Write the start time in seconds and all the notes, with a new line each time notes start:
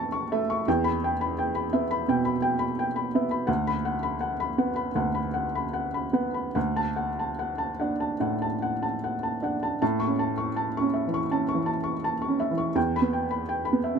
Already playing: E3 A3 E5 A5 C#6
0.12 C#6
0.32 A3 E5
0.50 C#6
0.68 E2 G5
0.84 B5
1.04 G5
1.21 B5
1.39 G5
1.55 B5
1.73 B3 E5
1.91 B5
2.08 B2 G5
2.25 B5
2.42 G5
2.59 B5
2.79 G5
2.96 B5
3.15 B3 E5
3.31 B5
3.47 D2 F#5
3.67 B5
3.85 F#5
4.03 B5
4.21 F#5
4.40 B5
4.58 B3 F#5
4.76 B5
4.95 D2 F#5
5.15 B5
5.34 F#5
5.55 B5
5.73 F#5
5.94 B5
6.13 B3 F#5
6.34 B5
6.55 D2 F#5
6.76 A5
6.96 F#5
7.19 A5
7.39 F#5
7.58 A5
7.80 D4 F#5
8.00 A5
8.20 A2 F#5
8.42 A5
8.62 F#5
8.82 A5
9.04 F#5
9.23 A5
9.42 D4 F#5
9.63 A5
9.82 A2 A5
10.00 C#6
10.07 C#4
10.19 A5
10.38 C#6
10.56 A5
10.77 C#4 C#6
10.94 E5
11.07 E3
11.14 C#6
11.31 C#4 A5
11.49 C#6
11.54 E3
11.66 A5
11.84 C#6
12.04 A5
12.22 C#6
12.28 C#4
12.40 E5
12.51 E3
12.58 C#6
12.75 E2 G5
12.96 B5
13.02 B3
13.13 G5
13.31 B5
13.49 G5
13.65 B5
13.73 B3
13.84 E5
13.95 B2